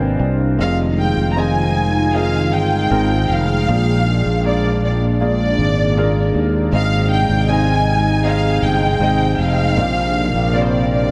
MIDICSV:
0, 0, Header, 1, 5, 480
1, 0, Start_track
1, 0, Tempo, 772201
1, 372, Time_signature, 4, 2, 24, 8
1, 2287, Tempo, 761421
1, 6972, End_track
2, 0, Start_track
2, 0, Title_t, "Violin section"
2, 0, Program_c, 0, 48
2, 375, Note_on_c, 0, 77, 86
2, 483, Note_off_c, 0, 77, 0
2, 620, Note_on_c, 0, 79, 82
2, 800, Note_off_c, 0, 79, 0
2, 821, Note_on_c, 0, 82, 61
2, 859, Note_off_c, 0, 82, 0
2, 860, Note_on_c, 0, 80, 82
2, 1336, Note_off_c, 0, 80, 0
2, 1338, Note_on_c, 0, 77, 89
2, 1575, Note_off_c, 0, 77, 0
2, 1579, Note_on_c, 0, 79, 80
2, 2052, Note_off_c, 0, 79, 0
2, 2059, Note_on_c, 0, 77, 89
2, 2773, Note_off_c, 0, 77, 0
2, 2784, Note_on_c, 0, 74, 73
2, 2999, Note_off_c, 0, 74, 0
2, 3029, Note_on_c, 0, 74, 61
2, 3132, Note_off_c, 0, 74, 0
2, 3266, Note_on_c, 0, 74, 83
2, 3948, Note_off_c, 0, 74, 0
2, 4222, Note_on_c, 0, 77, 99
2, 4434, Note_off_c, 0, 77, 0
2, 4457, Note_on_c, 0, 79, 94
2, 4687, Note_off_c, 0, 79, 0
2, 4697, Note_on_c, 0, 80, 93
2, 5167, Note_off_c, 0, 80, 0
2, 5174, Note_on_c, 0, 77, 96
2, 5406, Note_off_c, 0, 77, 0
2, 5413, Note_on_c, 0, 79, 85
2, 5885, Note_off_c, 0, 79, 0
2, 5892, Note_on_c, 0, 77, 92
2, 6609, Note_off_c, 0, 77, 0
2, 6615, Note_on_c, 0, 74, 70
2, 6653, Note_off_c, 0, 74, 0
2, 6662, Note_on_c, 0, 72, 60
2, 6698, Note_off_c, 0, 72, 0
2, 6702, Note_on_c, 0, 74, 69
2, 6842, Note_off_c, 0, 74, 0
2, 6850, Note_on_c, 0, 74, 66
2, 6972, Note_off_c, 0, 74, 0
2, 6972, End_track
3, 0, Start_track
3, 0, Title_t, "Grand piano"
3, 0, Program_c, 1, 0
3, 0, Control_c, 1, 64, 127
3, 0, Note_on_c, 1, 60, 69
3, 0, Note_on_c, 1, 65, 64
3, 0, Note_on_c, 1, 70, 65
3, 0, Note_on_c, 1, 71, 58
3, 0, Note_on_c, 1, 72, 79
3, 0, Note_on_c, 1, 74, 52
3, 0, Note_on_c, 1, 75, 50
3, 0, Note_on_c, 1, 77, 58
3, 0, Note_on_c, 1, 79, 52
3, 4, Note_on_c, 1, 80, 50
3, 118, Note_off_c, 1, 80, 0
3, 123, Note_off_c, 1, 79, 0
3, 123, Note_on_c, 1, 79, 51
3, 344, Note_off_c, 1, 60, 0
3, 345, Note_off_c, 1, 65, 0
3, 346, Note_off_c, 1, 70, 0
3, 351, Note_off_c, 1, 79, 0
3, 358, Note_on_c, 1, 60, 52
3, 362, Note_on_c, 1, 65, 48
3, 363, Note_on_c, 1, 48, 47
3, 363, Note_on_c, 1, 68, 49
3, 367, Note_off_c, 1, 75, 0
3, 367, Note_on_c, 1, 75, 61
3, 368, Note_off_c, 1, 72, 0
3, 380, Note_off_c, 1, 71, 0
3, 380, Control_c, 1, 64, 0
3, 381, Note_off_c, 1, 74, 0
3, 383, Note_off_c, 1, 77, 0
3, 480, Control_c, 1, 64, 127
3, 823, Note_off_c, 1, 60, 0
3, 825, Note_off_c, 1, 65, 0
3, 825, Note_off_c, 1, 68, 0
3, 828, Note_off_c, 1, 75, 0
3, 844, Note_on_c, 1, 60, 54
3, 845, Note_on_c, 1, 65, 47
3, 850, Note_on_c, 1, 75, 64
3, 851, Note_on_c, 1, 68, 52
3, 1065, Note_off_c, 1, 48, 0
3, 1304, Note_off_c, 1, 60, 0
3, 1305, Note_off_c, 1, 65, 0
3, 1307, Note_off_c, 1, 75, 0
3, 1308, Note_off_c, 1, 68, 0
3, 1329, Note_on_c, 1, 60, 56
3, 1333, Note_on_c, 1, 65, 54
3, 1333, Note_on_c, 1, 68, 57
3, 1336, Note_on_c, 1, 75, 63
3, 1785, Note_off_c, 1, 60, 0
3, 1787, Note_off_c, 1, 65, 0
3, 1787, Note_off_c, 1, 68, 0
3, 1788, Note_off_c, 1, 75, 0
3, 1804, Note_on_c, 1, 60, 63
3, 1806, Note_on_c, 1, 65, 61
3, 1809, Note_on_c, 1, 68, 60
3, 1812, Note_on_c, 1, 70, 73
3, 2260, Note_off_c, 1, 60, 0
3, 2261, Note_off_c, 1, 65, 0
3, 2263, Note_off_c, 1, 68, 0
3, 2264, Note_off_c, 1, 70, 0
3, 2289, Note_on_c, 1, 58, 49
3, 2290, Note_on_c, 1, 46, 48
3, 2290, Note_on_c, 1, 65, 51
3, 2290, Note_on_c, 1, 68, 55
3, 2291, Note_on_c, 1, 53, 52
3, 2292, Note_on_c, 1, 74, 54
3, 2295, Control_c, 1, 64, 0
3, 2422, Control_c, 1, 64, 127
3, 2745, Note_off_c, 1, 58, 0
3, 2746, Note_off_c, 1, 65, 0
3, 2746, Note_off_c, 1, 68, 0
3, 2747, Note_off_c, 1, 74, 0
3, 2770, Note_on_c, 1, 58, 56
3, 2771, Note_on_c, 1, 65, 50
3, 2774, Note_on_c, 1, 68, 51
3, 2776, Note_on_c, 1, 74, 69
3, 2984, Note_off_c, 1, 46, 0
3, 2985, Note_off_c, 1, 53, 0
3, 3224, Note_off_c, 1, 58, 0
3, 3224, Note_off_c, 1, 65, 0
3, 3226, Note_off_c, 1, 68, 0
3, 3227, Note_off_c, 1, 74, 0
3, 3248, Note_on_c, 1, 58, 55
3, 3251, Note_on_c, 1, 68, 51
3, 3252, Note_on_c, 1, 65, 61
3, 3256, Note_on_c, 1, 74, 69
3, 3701, Note_off_c, 1, 58, 0
3, 3703, Note_off_c, 1, 65, 0
3, 3703, Note_off_c, 1, 68, 0
3, 3706, Note_off_c, 1, 74, 0
3, 3734, Note_on_c, 1, 58, 69
3, 3734, Note_on_c, 1, 65, 70
3, 3738, Note_on_c, 1, 68, 65
3, 3740, Note_on_c, 1, 70, 76
3, 4182, Note_off_c, 1, 58, 0
3, 4182, Note_off_c, 1, 65, 0
3, 4185, Note_off_c, 1, 68, 0
3, 4186, Note_off_c, 1, 70, 0
3, 4204, Note_on_c, 1, 60, 54
3, 4207, Note_on_c, 1, 44, 51
3, 4208, Note_on_c, 1, 63, 51
3, 4210, Control_c, 1, 64, 0
3, 4211, Note_on_c, 1, 51, 45
3, 4211, Note_on_c, 1, 75, 68
3, 4212, Note_on_c, 1, 68, 53
3, 4332, Control_c, 1, 64, 127
3, 4656, Note_off_c, 1, 60, 0
3, 4658, Note_off_c, 1, 63, 0
3, 4660, Note_off_c, 1, 68, 0
3, 4660, Note_off_c, 1, 75, 0
3, 4683, Note_on_c, 1, 60, 63
3, 4684, Note_on_c, 1, 63, 51
3, 4688, Note_on_c, 1, 68, 50
3, 4688, Note_on_c, 1, 75, 65
3, 4896, Note_off_c, 1, 44, 0
3, 4898, Note_off_c, 1, 51, 0
3, 5136, Note_off_c, 1, 60, 0
3, 5136, Note_off_c, 1, 63, 0
3, 5138, Note_off_c, 1, 75, 0
3, 5139, Note_off_c, 1, 68, 0
3, 5160, Note_on_c, 1, 63, 57
3, 5161, Note_on_c, 1, 60, 61
3, 5163, Note_on_c, 1, 68, 60
3, 5166, Note_on_c, 1, 75, 65
3, 5614, Note_off_c, 1, 63, 0
3, 5615, Note_off_c, 1, 60, 0
3, 5616, Note_off_c, 1, 68, 0
3, 5617, Note_off_c, 1, 75, 0
3, 5644, Note_on_c, 1, 60, 69
3, 5645, Note_on_c, 1, 63, 62
3, 5648, Note_on_c, 1, 68, 61
3, 5651, Note_on_c, 1, 75, 74
3, 6098, Note_off_c, 1, 60, 0
3, 6099, Note_off_c, 1, 63, 0
3, 6100, Note_off_c, 1, 68, 0
3, 6102, Note_off_c, 1, 75, 0
3, 6121, Note_on_c, 1, 60, 53
3, 6125, Note_on_c, 1, 65, 48
3, 6126, Note_on_c, 1, 46, 50
3, 6126, Note_on_c, 1, 53, 50
3, 6127, Note_on_c, 1, 70, 47
3, 6128, Control_c, 1, 64, 0
3, 6131, Note_on_c, 1, 74, 55
3, 6221, Control_c, 1, 64, 127
3, 6579, Note_off_c, 1, 60, 0
3, 6581, Note_off_c, 1, 65, 0
3, 6582, Note_off_c, 1, 70, 0
3, 6584, Note_off_c, 1, 74, 0
3, 6607, Note_on_c, 1, 65, 56
3, 6609, Note_on_c, 1, 60, 53
3, 6611, Note_on_c, 1, 70, 58
3, 6615, Note_on_c, 1, 74, 64
3, 6822, Note_off_c, 1, 53, 0
3, 6823, Note_off_c, 1, 46, 0
3, 6972, Note_off_c, 1, 60, 0
3, 6972, Note_off_c, 1, 65, 0
3, 6972, Note_off_c, 1, 70, 0
3, 6972, Note_off_c, 1, 74, 0
3, 6972, End_track
4, 0, Start_track
4, 0, Title_t, "Analog synth pad"
4, 0, Program_c, 2, 89
4, 0, Note_on_c, 2, 48, 73
4, 0, Note_on_c, 2, 58, 72
4, 0, Note_on_c, 2, 62, 86
4, 349, Note_off_c, 2, 62, 0
4, 350, Note_off_c, 2, 48, 0
4, 350, Note_off_c, 2, 58, 0
4, 366, Note_on_c, 2, 56, 72
4, 366, Note_on_c, 2, 65, 80
4, 368, Note_on_c, 2, 51, 79
4, 2265, Note_off_c, 2, 65, 0
4, 2266, Note_off_c, 2, 51, 0
4, 2285, Note_on_c, 2, 46, 74
4, 2288, Note_on_c, 2, 62, 86
4, 4182, Note_off_c, 2, 46, 0
4, 4183, Note_off_c, 2, 62, 0
4, 4205, Note_on_c, 2, 48, 81
4, 4205, Note_on_c, 2, 63, 89
4, 6091, Note_off_c, 2, 56, 0
4, 6101, Note_off_c, 2, 63, 0
4, 6113, Note_on_c, 2, 62, 85
4, 6117, Note_on_c, 2, 58, 73
4, 6972, Note_off_c, 2, 48, 0
4, 6972, Note_off_c, 2, 58, 0
4, 6972, Note_off_c, 2, 62, 0
4, 6972, End_track
5, 0, Start_track
5, 0, Title_t, "Fretless electric bass"
5, 0, Program_c, 3, 35
5, 0, Note_on_c, 3, 32, 60
5, 98, Note_off_c, 3, 32, 0
5, 120, Note_on_c, 3, 36, 76
5, 350, Note_off_c, 3, 36, 0
5, 365, Note_on_c, 3, 29, 86
5, 705, Note_off_c, 3, 29, 0
5, 725, Note_on_c, 3, 29, 60
5, 1569, Note_off_c, 3, 29, 0
5, 1569, Note_on_c, 3, 31, 77
5, 1792, Note_off_c, 3, 31, 0
5, 1807, Note_on_c, 3, 32, 84
5, 2030, Note_off_c, 3, 32, 0
5, 2045, Note_on_c, 3, 29, 77
5, 2268, Note_off_c, 3, 29, 0
5, 2289, Note_on_c, 3, 34, 101
5, 2624, Note_off_c, 3, 34, 0
5, 2650, Note_on_c, 3, 34, 71
5, 3461, Note_off_c, 3, 34, 0
5, 3487, Note_on_c, 3, 32, 81
5, 3939, Note_off_c, 3, 32, 0
5, 3965, Note_on_c, 3, 39, 87
5, 4186, Note_off_c, 3, 39, 0
5, 4205, Note_on_c, 3, 32, 98
5, 4536, Note_off_c, 3, 32, 0
5, 4562, Note_on_c, 3, 32, 79
5, 5374, Note_off_c, 3, 32, 0
5, 5402, Note_on_c, 3, 31, 81
5, 5623, Note_off_c, 3, 31, 0
5, 5636, Note_on_c, 3, 32, 76
5, 5860, Note_off_c, 3, 32, 0
5, 5881, Note_on_c, 3, 29, 80
5, 6104, Note_off_c, 3, 29, 0
5, 6123, Note_on_c, 3, 34, 94
5, 6458, Note_off_c, 3, 34, 0
5, 6486, Note_on_c, 3, 34, 78
5, 6972, Note_off_c, 3, 34, 0
5, 6972, End_track
0, 0, End_of_file